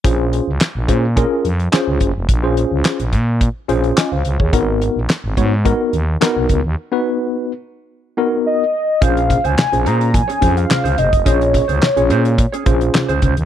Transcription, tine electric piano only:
\new Staff \with { instrumentName = "Tine electric piano" } { \time 4/4 \key bes \minor \tempo 4 = 107 << { r1 | r2. <ees'' aes''>16 <c'' f''>8 <aes' des''>16~ | <aes' des''>16 r2. r8. | r1 |
r1 | r1 | } \\ { <des' f' aes' c''>8. r8. <des' f' aes' c''>16 r16 <des' f' aes' bes'>8 r8 <des' f' aes' c''>8. r16 | r16 <des' f' aes' c''>4 r4 r16 <des' f' aes' c''>8. r8. | <ces' ees' ges' bes'>8. r8. <ces' ees' ges' des''>16 r16 <ces' ees' ges' bes'>8 r8 <ces' ees' ges' bes'>8. r16 | r16 <ces' ees' ges' ces''>4 r4 r16 <ces' ees' ges' bes'>8. r8. |
<des' f' aes' c''>8. r8 <des' f' aes' c''>8. r8 <des' f' aes' c''>8. r8. | <des' f' aes' ees''>8. r8 <des' f' aes' des''>8. r8 <des' f' aes' c''>8. r8. | } >> }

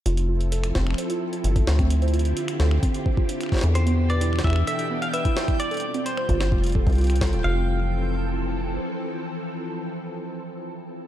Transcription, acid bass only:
\new Staff \with { instrumentName = "Acid bass" } { \clef bass \time 4/4 \key f \lydian \tempo 4 = 130 f,,4. f,,8 r4 g,,8 d,8~ | d,4 r8 d,8 r4. r16 e,16~ | e,4. e,8 r2 | r4. g,,8 f,,8. c,4 d,,16 |
f,,2. r4 | r1 | }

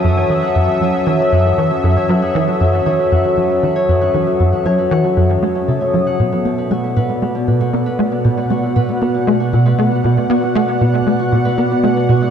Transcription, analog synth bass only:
\new Staff \with { instrumentName = "Analog synth bass" } { \clef bass \time 4/4 \key fis \dorian \tempo 4 = 117 fis,8 e16 r16 fis,16 r16 fis16 r16 e16 r16 fis,8 e16 r16 fis,16 r16 | fis16 r16 e16 r16 fis,8 e16 r16 fis,16 r16 fis16 r16 e16 r16 fis,8 | e16 r16 fis,16 r16 fis16 r16 e16 r16 fis,8 a8 cis16 r16 fis8 | \key b \dorian b,16 r16 b16 r16 a16 r16 b,8 a16 r16 b,16 r16 b16 r16 a16 r16 |
b,8 a16 r16 b,16 r16 b16 r16 a16 r16 b,8 a16 r16 b,16 r16 | b16 r16 a16 r16 b,8 a16 r16 b,16 r16 b16 r16 a16 r16 b,8 | }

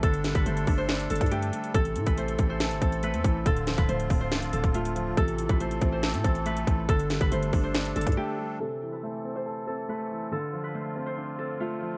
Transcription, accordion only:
<<
  \new Staff \with { instrumentName = "Accordion" } { \time 4/4 \key a \minor \tempo 4 = 140 << { a'1 | a'1 | f'1 | a'1~ |
a'1 | a'1 | f'1 | } \\ { d'1 | c'1~ | c'1~ | c'1 |
d'1 | c'1 | c'1 | } >> }
  \new Staff \with { instrumentName = "Accordion" } { \clef bass \time 4/4 \key a \minor g1 | e1 | d1 | e1 |
g1 | e1 | d1 | }
>>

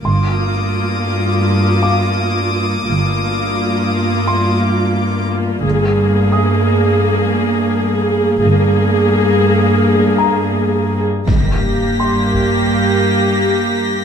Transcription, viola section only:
\new Staff \with { instrumentName = "Viola section" } { \time 4/4 \key g \phrygian \tempo 4 = 85 <bes f'>1 | <bes f'>1 | <bes aes'>1 | <bes aes'>2.~ <bes aes'>8 r8 |
<bes g'>1 | }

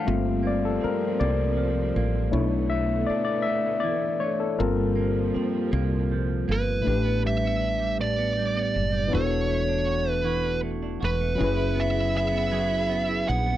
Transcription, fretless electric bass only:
\new Staff \with { instrumentName = "Fretless electric bass" } { \clef bass \time 6/8 \key g \lydian \tempo 4. = 53 g,,4 r8 c,4 a,,8 | b,,4 r2 | g,,4 r8 c,4 g,,8 | a,,2~ a,,8 fis,,8 |
e,,2~ e,,8 e,,8 | fis,,2~ fis,,8 ais,,8 | }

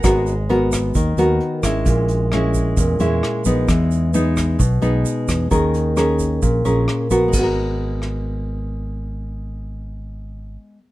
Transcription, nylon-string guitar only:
\new Staff \with { instrumentName = "Nylon-string guitar" } { \time 4/4 \key gis \minor \tempo 4 = 132 << { <b fis' ais'>8 r8 <b fis' ais'>4 r8 <b fis' ais'>4 <gis cis' e'>8~ | <gis cis' e'>4 <gis cis' e'>4. <gis cis' e'>4 <gis b dis'>8~ | <gis b dis'>4 <gis b dis'>4 r8 <gis b dis'>4. | <cis' gis' ais'>4 <cis' gis' ais'>4. <cis' gis' ais'>4 <b fis' ais'>8~ |
<b fis' ais'>4 r2. | r1 | } \\ { gis2 dis2 | ais,2 ais,2 | e2 b,2 | dis2 ais,2 |
<gis b fis' ais'>1~ | <gis b fis' ais'>1 | } >> }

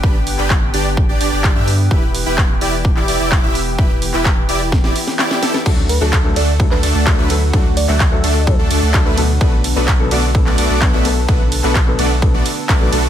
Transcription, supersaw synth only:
\new Staff \with { instrumentName = "Supersaw synth" } { \time 4/4 \key e \minor \tempo 4 = 128 <d' g' b'>16 r8 <d' g' b'>16 r8 <d' g' d''>16 r8 <d' g' d''>16 <d' g' d''>16 <d' g' d''>8 <d' g' e''>16 r8 | <e' g' b'>16 r8 <e' g' b'>16 r8 <e' g' d''>16 r8 <e' g' d''>16 <e' g' d''>16 <e' g' d''>8 <e' g' e''>16 r8 | <e' g' b'>16 r8 <e' g' b'>16 r8 <e' g' d''>16 r8 <e' g' d''>16 r8 <e' g' d''>8 <e' g' a'>16 r16 | <a d' fis'>16 r8 <a d' fis'>16 r8 <a d' a'>16 r8 <a d' a'>16 <a d' a'>16 <a d' a'>8 <a d' b'>16 r8 |
<a d' fis'>16 r8 <a d' fis'>16 r8 <a d' a'>16 r8 <a d' a'>16 <a d' a'>16 <a d' a'>8 <a d' b'>16 r8 | <a b d' fis' b'>16 r8 <a b d' fis' b'>16 r8 <a b d' fis' d''>16 r8 <a b d' fis' d''>16 <a b d' fis' d''>16 <a b d' fis' d''>8 <a b d' fis' e''>16 r8 | <a b d' fis' b'>16 r8 <a b d' fis' b'>16 r8 <a b d' fis' d''>16 r8 <a b d' fis' d''>16 r8 <a b d' fis' d''>8 <a b d' fis' a'>16 r16 | }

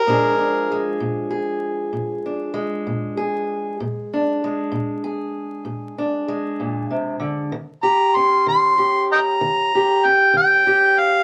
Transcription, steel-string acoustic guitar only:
\new Staff \with { instrumentName = "Steel-string acoustic guitar" } { \clef bass \time 12/8 \key bes \mixolydian \tempo 4. = 64 << { <f aes d' aes'>8 d'8 aes4 aes'4. d'8 aes4 aes'4 | r8 d'8 aes4 aes'4. d'8 aes2 | r8 g'8 des'4 g'4. g'8 des'4 g'4 | } \\ { bes,4 r8 bes,4 r8 bes,4 r8 bes,4 r8 | bes,4 r8 bes,4 r8 bes,4 r8 bes,8 c8 d8 | ees4 r8 ees4 r8 ees4 r8 ees4 r8 | } >> }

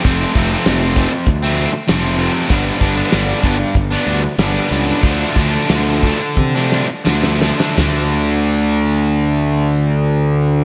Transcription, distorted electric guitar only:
\new Staff \with { instrumentName = "Distorted electric guitar" } { \time 4/4 \key d \dorian \tempo 4 = 92 <f, c f a c'>8 <c f a c'>16 <f a c'>16 <f, c f a c'>8 <c f a c'>8. <f a c'>8. <f, c f a c'>8 <c f a c'>16 <f a c'>16 | <g, d g b d'>8 <d g b d'>16 <g b d'>16 <g, d g b d'>8 <d g b d'>8. <g b d'>8. <g, d g b d'>8 <d g b d'>16 <g b d'>16 | <d f a d'>8 <d f a d'>16 <f a d'>16 <d f a d'>8 <d f a d'>8. <f a d'>8. <d f a d'>8 <d f a d'>16 <f a d'>16 | <d a d'>1 | }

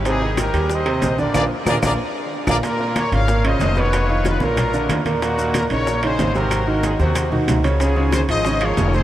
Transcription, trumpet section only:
\new Staff \with { instrumentName = "Trumpet section" } { \time 4/4 \key des \major \tempo 4 = 186 <ees' aes'>4 <g' bes'>4 <c'' ees''>4. <bes' d''>8 | <aes' bes' d''>8 r8 <aes' bes' d''>8 <aes' bes' d''>8 r4. <aes' bes' d''>8 | <f' bes'>4 <bes' des''>8 <des'' f''>4 <c'' ees''>4 <ces'' des''>8~ | <ces'' des''>4 <eis' b'>8 <eis' ais'>2 r8 |
<ees' ges'>4 <ges' bes'>8 <bes' des''>4 <aes' c''>4 <ges' bes'>8~ | <ges' bes'>4 <ees' aes'>8 <ees' ges'>4 r4. | <f' aes'>4 <aes' c''>8 <c'' ees''>4 <bes' des''>4 <aes' c''>8 | }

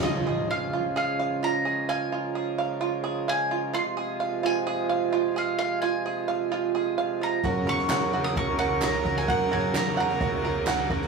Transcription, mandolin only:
\new Staff \with { instrumentName = "Mandolin" } { \time 4/4 \key des \major \tempo 4 = 130 ees''4 f''4 f''4 bes''4 | aes''2. aes''4 | c'''4 r8 aes''2 f''8 | f''8 aes''4 r2 bes''8~ |
bes''8 des'''4~ des'''16 ees'''16 des'''8 des'''8 bes''8. aes''16 | ges''8 aes''8 bes''8 bes''2 r8 | }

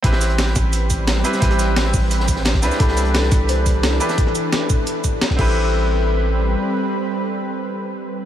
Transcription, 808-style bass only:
\new Staff \with { instrumentName = "808-style bass" } { \clef bass \time 4/4 \key a \minor \tempo 4 = 174 a,,4. a,,2 r8 | a,,4. a,,2 c,8 | c,4. c,2 r8 | r2. r8 a,,8~ |
a,,2. r4 | r1 | }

